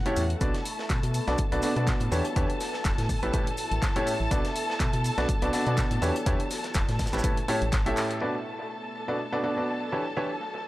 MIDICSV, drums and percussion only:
0, 0, Header, 1, 2, 480
1, 0, Start_track
1, 0, Key_signature, 2, "minor"
1, 0, Tempo, 487805
1, 404, Time_signature, 4, 2, 24, 8
1, 10506, End_track
2, 0, Start_track
2, 0, Title_t, "Drums"
2, 56, Note_on_c, 9, 42, 49
2, 154, Note_off_c, 9, 42, 0
2, 161, Note_on_c, 9, 82, 68
2, 163, Note_on_c, 9, 46, 89
2, 260, Note_off_c, 9, 82, 0
2, 262, Note_off_c, 9, 46, 0
2, 296, Note_on_c, 9, 42, 33
2, 394, Note_off_c, 9, 42, 0
2, 403, Note_on_c, 9, 42, 68
2, 404, Note_on_c, 9, 36, 109
2, 404, Note_on_c, 9, 82, 75
2, 502, Note_off_c, 9, 36, 0
2, 502, Note_off_c, 9, 42, 0
2, 502, Note_off_c, 9, 82, 0
2, 535, Note_on_c, 9, 38, 47
2, 536, Note_on_c, 9, 42, 47
2, 633, Note_off_c, 9, 38, 0
2, 634, Note_off_c, 9, 42, 0
2, 644, Note_on_c, 9, 46, 103
2, 646, Note_on_c, 9, 82, 67
2, 742, Note_off_c, 9, 46, 0
2, 744, Note_off_c, 9, 82, 0
2, 778, Note_on_c, 9, 38, 54
2, 877, Note_off_c, 9, 38, 0
2, 882, Note_on_c, 9, 82, 81
2, 884, Note_on_c, 9, 36, 113
2, 884, Note_on_c, 9, 42, 75
2, 885, Note_on_c, 9, 38, 110
2, 887, Note_on_c, 9, 39, 108
2, 980, Note_off_c, 9, 82, 0
2, 982, Note_off_c, 9, 36, 0
2, 983, Note_off_c, 9, 38, 0
2, 983, Note_off_c, 9, 42, 0
2, 986, Note_off_c, 9, 39, 0
2, 1017, Note_on_c, 9, 42, 48
2, 1022, Note_off_c, 9, 42, 0
2, 1022, Note_on_c, 9, 42, 41
2, 1120, Note_off_c, 9, 42, 0
2, 1124, Note_on_c, 9, 46, 89
2, 1124, Note_on_c, 9, 82, 68
2, 1222, Note_off_c, 9, 82, 0
2, 1223, Note_off_c, 9, 46, 0
2, 1252, Note_on_c, 9, 38, 43
2, 1257, Note_on_c, 9, 42, 34
2, 1351, Note_off_c, 9, 38, 0
2, 1355, Note_off_c, 9, 42, 0
2, 1358, Note_on_c, 9, 82, 74
2, 1364, Note_on_c, 9, 36, 110
2, 1364, Note_on_c, 9, 42, 74
2, 1456, Note_off_c, 9, 82, 0
2, 1462, Note_off_c, 9, 36, 0
2, 1463, Note_off_c, 9, 42, 0
2, 1497, Note_on_c, 9, 42, 41
2, 1595, Note_off_c, 9, 42, 0
2, 1596, Note_on_c, 9, 82, 63
2, 1603, Note_on_c, 9, 38, 37
2, 1604, Note_on_c, 9, 46, 94
2, 1694, Note_off_c, 9, 82, 0
2, 1702, Note_off_c, 9, 38, 0
2, 1702, Note_off_c, 9, 46, 0
2, 1736, Note_on_c, 9, 42, 33
2, 1835, Note_off_c, 9, 42, 0
2, 1844, Note_on_c, 9, 36, 119
2, 1844, Note_on_c, 9, 38, 112
2, 1844, Note_on_c, 9, 42, 69
2, 1845, Note_on_c, 9, 82, 82
2, 1847, Note_on_c, 9, 39, 107
2, 1942, Note_off_c, 9, 36, 0
2, 1942, Note_off_c, 9, 38, 0
2, 1942, Note_off_c, 9, 42, 0
2, 1943, Note_off_c, 9, 82, 0
2, 1946, Note_off_c, 9, 39, 0
2, 1971, Note_on_c, 9, 42, 39
2, 1977, Note_off_c, 9, 42, 0
2, 1977, Note_on_c, 9, 42, 49
2, 2075, Note_off_c, 9, 42, 0
2, 2084, Note_on_c, 9, 46, 88
2, 2086, Note_on_c, 9, 82, 65
2, 2183, Note_off_c, 9, 46, 0
2, 2184, Note_off_c, 9, 82, 0
2, 2212, Note_on_c, 9, 42, 41
2, 2310, Note_off_c, 9, 42, 0
2, 2324, Note_on_c, 9, 36, 111
2, 2324, Note_on_c, 9, 42, 76
2, 2330, Note_on_c, 9, 82, 73
2, 2422, Note_off_c, 9, 36, 0
2, 2423, Note_off_c, 9, 42, 0
2, 2429, Note_off_c, 9, 82, 0
2, 2457, Note_on_c, 9, 42, 48
2, 2555, Note_off_c, 9, 42, 0
2, 2564, Note_on_c, 9, 46, 94
2, 2564, Note_on_c, 9, 82, 67
2, 2565, Note_on_c, 9, 38, 43
2, 2662, Note_off_c, 9, 46, 0
2, 2662, Note_off_c, 9, 82, 0
2, 2663, Note_off_c, 9, 38, 0
2, 2690, Note_on_c, 9, 38, 42
2, 2789, Note_off_c, 9, 38, 0
2, 2796, Note_on_c, 9, 38, 104
2, 2803, Note_on_c, 9, 42, 75
2, 2804, Note_on_c, 9, 36, 111
2, 2804, Note_on_c, 9, 82, 89
2, 2807, Note_on_c, 9, 39, 109
2, 2894, Note_off_c, 9, 38, 0
2, 2902, Note_off_c, 9, 36, 0
2, 2902, Note_off_c, 9, 42, 0
2, 2902, Note_off_c, 9, 82, 0
2, 2905, Note_off_c, 9, 39, 0
2, 2936, Note_on_c, 9, 42, 50
2, 2938, Note_on_c, 9, 38, 46
2, 3034, Note_off_c, 9, 42, 0
2, 3036, Note_off_c, 9, 38, 0
2, 3043, Note_on_c, 9, 46, 84
2, 3044, Note_on_c, 9, 36, 57
2, 3045, Note_on_c, 9, 82, 76
2, 3142, Note_off_c, 9, 36, 0
2, 3142, Note_off_c, 9, 46, 0
2, 3143, Note_off_c, 9, 82, 0
2, 3176, Note_on_c, 9, 42, 35
2, 3274, Note_off_c, 9, 42, 0
2, 3283, Note_on_c, 9, 82, 78
2, 3284, Note_on_c, 9, 36, 105
2, 3284, Note_on_c, 9, 42, 74
2, 3382, Note_off_c, 9, 36, 0
2, 3382, Note_off_c, 9, 42, 0
2, 3382, Note_off_c, 9, 82, 0
2, 3416, Note_on_c, 9, 42, 51
2, 3514, Note_off_c, 9, 42, 0
2, 3516, Note_on_c, 9, 82, 62
2, 3524, Note_on_c, 9, 46, 90
2, 3614, Note_off_c, 9, 82, 0
2, 3622, Note_off_c, 9, 46, 0
2, 3656, Note_on_c, 9, 42, 34
2, 3754, Note_off_c, 9, 42, 0
2, 3763, Note_on_c, 9, 36, 110
2, 3763, Note_on_c, 9, 42, 74
2, 3764, Note_on_c, 9, 38, 115
2, 3766, Note_on_c, 9, 39, 108
2, 3766, Note_on_c, 9, 82, 85
2, 3862, Note_off_c, 9, 36, 0
2, 3862, Note_off_c, 9, 42, 0
2, 3863, Note_off_c, 9, 38, 0
2, 3864, Note_off_c, 9, 82, 0
2, 3865, Note_off_c, 9, 39, 0
2, 3896, Note_on_c, 9, 42, 51
2, 3994, Note_off_c, 9, 42, 0
2, 4004, Note_on_c, 9, 46, 89
2, 4010, Note_on_c, 9, 82, 68
2, 4102, Note_off_c, 9, 46, 0
2, 4108, Note_off_c, 9, 82, 0
2, 4243, Note_on_c, 9, 36, 102
2, 4243, Note_on_c, 9, 42, 78
2, 4246, Note_on_c, 9, 82, 89
2, 4342, Note_off_c, 9, 36, 0
2, 4342, Note_off_c, 9, 42, 0
2, 4345, Note_off_c, 9, 82, 0
2, 4376, Note_on_c, 9, 42, 49
2, 4378, Note_on_c, 9, 38, 46
2, 4474, Note_off_c, 9, 42, 0
2, 4476, Note_off_c, 9, 38, 0
2, 4483, Note_on_c, 9, 46, 101
2, 4483, Note_on_c, 9, 82, 62
2, 4582, Note_off_c, 9, 46, 0
2, 4582, Note_off_c, 9, 82, 0
2, 4625, Note_on_c, 9, 38, 51
2, 4722, Note_off_c, 9, 38, 0
2, 4722, Note_on_c, 9, 38, 102
2, 4723, Note_on_c, 9, 36, 114
2, 4723, Note_on_c, 9, 42, 78
2, 4727, Note_on_c, 9, 39, 112
2, 4727, Note_on_c, 9, 82, 79
2, 4820, Note_off_c, 9, 38, 0
2, 4822, Note_off_c, 9, 36, 0
2, 4822, Note_off_c, 9, 42, 0
2, 4825, Note_off_c, 9, 39, 0
2, 4825, Note_off_c, 9, 82, 0
2, 4852, Note_on_c, 9, 42, 39
2, 4856, Note_off_c, 9, 42, 0
2, 4856, Note_on_c, 9, 42, 51
2, 4954, Note_off_c, 9, 42, 0
2, 4963, Note_on_c, 9, 46, 85
2, 4973, Note_on_c, 9, 82, 66
2, 5061, Note_off_c, 9, 46, 0
2, 5071, Note_off_c, 9, 82, 0
2, 5096, Note_on_c, 9, 42, 37
2, 5103, Note_on_c, 9, 38, 39
2, 5194, Note_off_c, 9, 42, 0
2, 5202, Note_off_c, 9, 38, 0
2, 5203, Note_on_c, 9, 36, 111
2, 5203, Note_on_c, 9, 42, 75
2, 5210, Note_on_c, 9, 82, 87
2, 5301, Note_off_c, 9, 36, 0
2, 5301, Note_off_c, 9, 42, 0
2, 5308, Note_off_c, 9, 82, 0
2, 5333, Note_on_c, 9, 42, 36
2, 5335, Note_off_c, 9, 42, 0
2, 5335, Note_on_c, 9, 42, 52
2, 5434, Note_off_c, 9, 42, 0
2, 5440, Note_on_c, 9, 38, 36
2, 5442, Note_on_c, 9, 46, 93
2, 5449, Note_on_c, 9, 82, 70
2, 5539, Note_off_c, 9, 38, 0
2, 5541, Note_off_c, 9, 46, 0
2, 5547, Note_off_c, 9, 82, 0
2, 5575, Note_on_c, 9, 42, 37
2, 5673, Note_off_c, 9, 42, 0
2, 5682, Note_on_c, 9, 42, 79
2, 5683, Note_on_c, 9, 36, 110
2, 5683, Note_on_c, 9, 82, 89
2, 5684, Note_on_c, 9, 38, 102
2, 5686, Note_on_c, 9, 39, 112
2, 5781, Note_off_c, 9, 36, 0
2, 5781, Note_off_c, 9, 42, 0
2, 5781, Note_off_c, 9, 82, 0
2, 5783, Note_off_c, 9, 38, 0
2, 5784, Note_off_c, 9, 39, 0
2, 5815, Note_on_c, 9, 42, 55
2, 5820, Note_off_c, 9, 42, 0
2, 5820, Note_on_c, 9, 42, 40
2, 5918, Note_off_c, 9, 42, 0
2, 5923, Note_on_c, 9, 46, 87
2, 5930, Note_on_c, 9, 82, 74
2, 6022, Note_off_c, 9, 46, 0
2, 6029, Note_off_c, 9, 82, 0
2, 6060, Note_on_c, 9, 42, 46
2, 6158, Note_off_c, 9, 42, 0
2, 6163, Note_on_c, 9, 36, 110
2, 6163, Note_on_c, 9, 42, 80
2, 6165, Note_on_c, 9, 82, 79
2, 6261, Note_off_c, 9, 42, 0
2, 6262, Note_off_c, 9, 36, 0
2, 6264, Note_off_c, 9, 82, 0
2, 6296, Note_on_c, 9, 42, 52
2, 6394, Note_off_c, 9, 42, 0
2, 6403, Note_on_c, 9, 46, 101
2, 6403, Note_on_c, 9, 82, 75
2, 6406, Note_on_c, 9, 38, 45
2, 6501, Note_off_c, 9, 82, 0
2, 6502, Note_off_c, 9, 46, 0
2, 6505, Note_off_c, 9, 38, 0
2, 6533, Note_on_c, 9, 38, 44
2, 6536, Note_on_c, 9, 42, 38
2, 6632, Note_off_c, 9, 38, 0
2, 6635, Note_off_c, 9, 42, 0
2, 6635, Note_on_c, 9, 82, 86
2, 6636, Note_on_c, 9, 38, 118
2, 6643, Note_on_c, 9, 36, 112
2, 6644, Note_on_c, 9, 42, 81
2, 6647, Note_on_c, 9, 39, 119
2, 6733, Note_off_c, 9, 82, 0
2, 6735, Note_off_c, 9, 38, 0
2, 6742, Note_off_c, 9, 36, 0
2, 6742, Note_off_c, 9, 42, 0
2, 6745, Note_off_c, 9, 39, 0
2, 6776, Note_on_c, 9, 42, 52
2, 6778, Note_on_c, 9, 38, 50
2, 6874, Note_off_c, 9, 42, 0
2, 6876, Note_off_c, 9, 38, 0
2, 6880, Note_on_c, 9, 82, 66
2, 6881, Note_on_c, 9, 38, 90
2, 6883, Note_on_c, 9, 36, 57
2, 6884, Note_on_c, 9, 46, 86
2, 6947, Note_off_c, 9, 38, 0
2, 6947, Note_on_c, 9, 38, 86
2, 6953, Note_off_c, 9, 82, 0
2, 6953, Note_on_c, 9, 82, 67
2, 6982, Note_off_c, 9, 36, 0
2, 6982, Note_off_c, 9, 46, 0
2, 7016, Note_on_c, 9, 42, 38
2, 7017, Note_off_c, 9, 82, 0
2, 7017, Note_on_c, 9, 82, 72
2, 7018, Note_off_c, 9, 38, 0
2, 7018, Note_on_c, 9, 38, 86
2, 7067, Note_off_c, 9, 38, 0
2, 7067, Note_on_c, 9, 38, 87
2, 7070, Note_off_c, 9, 82, 0
2, 7070, Note_on_c, 9, 82, 63
2, 7114, Note_off_c, 9, 42, 0
2, 7123, Note_off_c, 9, 82, 0
2, 7123, Note_on_c, 9, 42, 78
2, 7123, Note_on_c, 9, 82, 91
2, 7124, Note_on_c, 9, 36, 114
2, 7166, Note_off_c, 9, 38, 0
2, 7221, Note_off_c, 9, 82, 0
2, 7222, Note_off_c, 9, 36, 0
2, 7222, Note_off_c, 9, 42, 0
2, 7256, Note_on_c, 9, 42, 53
2, 7354, Note_off_c, 9, 42, 0
2, 7363, Note_on_c, 9, 46, 93
2, 7462, Note_off_c, 9, 46, 0
2, 7496, Note_on_c, 9, 42, 37
2, 7594, Note_off_c, 9, 42, 0
2, 7601, Note_on_c, 9, 38, 106
2, 7601, Note_on_c, 9, 82, 77
2, 7603, Note_on_c, 9, 42, 77
2, 7604, Note_on_c, 9, 36, 116
2, 7607, Note_on_c, 9, 39, 119
2, 7699, Note_off_c, 9, 38, 0
2, 7699, Note_off_c, 9, 82, 0
2, 7702, Note_off_c, 9, 36, 0
2, 7702, Note_off_c, 9, 42, 0
2, 7705, Note_off_c, 9, 39, 0
2, 7736, Note_on_c, 9, 42, 54
2, 7835, Note_off_c, 9, 42, 0
2, 7841, Note_on_c, 9, 82, 71
2, 7844, Note_on_c, 9, 39, 89
2, 7844, Note_on_c, 9, 46, 86
2, 7940, Note_off_c, 9, 82, 0
2, 7942, Note_off_c, 9, 39, 0
2, 7942, Note_off_c, 9, 46, 0
2, 7976, Note_on_c, 9, 42, 37
2, 8075, Note_off_c, 9, 42, 0
2, 8075, Note_on_c, 9, 82, 77
2, 8173, Note_off_c, 9, 82, 0
2, 8212, Note_on_c, 9, 38, 41
2, 8310, Note_off_c, 9, 38, 0
2, 8324, Note_on_c, 9, 82, 60
2, 8422, Note_off_c, 9, 82, 0
2, 8452, Note_on_c, 9, 38, 47
2, 8550, Note_off_c, 9, 38, 0
2, 8561, Note_on_c, 9, 82, 82
2, 8659, Note_off_c, 9, 82, 0
2, 8696, Note_on_c, 9, 42, 40
2, 8794, Note_off_c, 9, 42, 0
2, 8809, Note_on_c, 9, 82, 60
2, 8907, Note_off_c, 9, 82, 0
2, 8940, Note_on_c, 9, 38, 35
2, 9038, Note_off_c, 9, 38, 0
2, 9047, Note_on_c, 9, 82, 77
2, 9145, Note_off_c, 9, 82, 0
2, 9172, Note_on_c, 9, 42, 38
2, 9271, Note_off_c, 9, 42, 0
2, 9285, Note_on_c, 9, 38, 32
2, 9287, Note_on_c, 9, 82, 57
2, 9384, Note_off_c, 9, 38, 0
2, 9386, Note_off_c, 9, 82, 0
2, 9527, Note_on_c, 9, 82, 77
2, 9626, Note_off_c, 9, 82, 0
2, 9652, Note_on_c, 9, 42, 35
2, 9750, Note_off_c, 9, 42, 0
2, 9762, Note_on_c, 9, 82, 64
2, 9860, Note_off_c, 9, 82, 0
2, 9897, Note_on_c, 9, 42, 37
2, 9995, Note_off_c, 9, 42, 0
2, 10005, Note_on_c, 9, 82, 79
2, 10103, Note_off_c, 9, 82, 0
2, 10239, Note_on_c, 9, 38, 41
2, 10242, Note_on_c, 9, 82, 68
2, 10337, Note_off_c, 9, 38, 0
2, 10341, Note_off_c, 9, 82, 0
2, 10373, Note_on_c, 9, 38, 36
2, 10472, Note_off_c, 9, 38, 0
2, 10506, End_track
0, 0, End_of_file